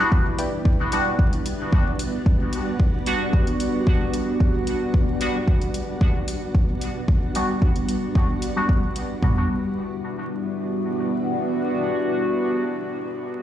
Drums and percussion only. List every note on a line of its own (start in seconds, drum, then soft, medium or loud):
0.12 kick loud
0.38 closed hi-hat medium
0.65 kick loud
0.92 closed hi-hat medium
1.19 kick loud
1.33 closed hi-hat soft
1.46 closed hi-hat medium
1.72 kick loud
1.99 closed hi-hat medium
2.26 kick loud
2.53 closed hi-hat medium
2.80 kick loud
3.06 closed hi-hat medium
3.33 kick loud
3.47 closed hi-hat soft
3.60 closed hi-hat medium
3.87 kick loud
4.14 closed hi-hat medium
4.40 kick loud
4.67 closed hi-hat medium
4.94 kick medium
5.21 closed hi-hat medium
5.47 kick loud
5.61 closed hi-hat soft
5.74 closed hi-hat medium
6.01 kick loud
6.28 closed hi-hat medium
6.55 kick loud
6.81 closed hi-hat medium
7.08 kick loud
7.35 closed hi-hat medium
7.62 kick loud
7.76 closed hi-hat soft
7.89 closed hi-hat medium
8.15 kick loud
8.42 closed hi-hat medium
8.69 kick loud
8.96 closed hi-hat medium
9.22 kick medium
9.22 floor tom medium